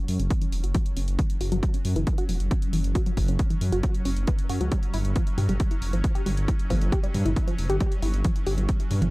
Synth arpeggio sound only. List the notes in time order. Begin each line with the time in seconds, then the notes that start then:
0.19 C#4
0.42 E3
0.64 F#4
0.74 F#3
0.97 C#4
1.19 E3
1.41 F#4
1.52 F#3
1.74 C#4
1.96 E3
2.18 F#4
2.29 F#3
2.51 C#4
2.73 E3
2.95 F#4
3.06 F#3
3.28 C#4
3.50 E3
3.72 F#4
3.83 F#3
4.05 C#4
4.28 E3
4.50 F#4
4.61 F#3
4.72 G3
4.94 E4
5.16 F3
5.38 G4
5.49 G3
5.71 E4
5.93 F3
6.15 G4
6.26 G3
6.48 E4
6.70 F3
6.92 G4
7.03 G3
7.25 E4
7.47 F3
7.70 G4
7.80 G3
8.02 E4
8.24 F3
8.47 G4
8.58 G3
8.80 E4
9.02 F3